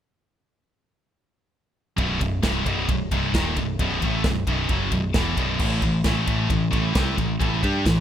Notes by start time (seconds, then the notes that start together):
1.97 B0 B1 F#2 B2, kick, ride
2.19 B0 B1 F#2, kick, ride
2.43 C1 C2 G2 C3, kick, snare, ride
2.65 B0 B1 F#2 B2, kick, ride
2.89 B0 B1 F#2, kick, ride
3.11 C1 C2 G2 C3, kick, ride
3.34 D#1 D#2 A#2 D#3, kick, snare, ride
3.57 B0 B1 F#2, kick, ride
3.79 B0 B1 F#2 B2, kick, ride
4.02 A1 A2 E3 A3, kick, ride
4.24 B0 B1 F#2, kick, snare, ride
4.47 B0 B1 F#2 B2, kick, ride
4.69 F#1 F#2 C#3 F#3, kick, ride
4.92 B0 B1 F#2, kick, ride
5.14 E1 E2 B2 E3, kick, snare, ride
5.37 B0 B1 F#2 B2, kick, ride
5.60 A1 A2 E3 A3, kick, crash
5.82 A1 A2 E3, kick, ride
6.04 A1 A2 E3 A3, kick, snare, ride
6.27 A1 A2 E3 A3, kick, ride
6.49 A1 A2 E3, kick, ride
6.71 A1 A2 E3 A3, kick, ride
6.93 C2 C3 G3 C4, kick, snare, ride
7.16 A1 A2 E3, kick, ride
7.40 A1 A2 E3 A3, kick, ride
7.63 G2 G3 D4 G4, kick, ride
7.85 A1 A2 E3, kick, snare, ride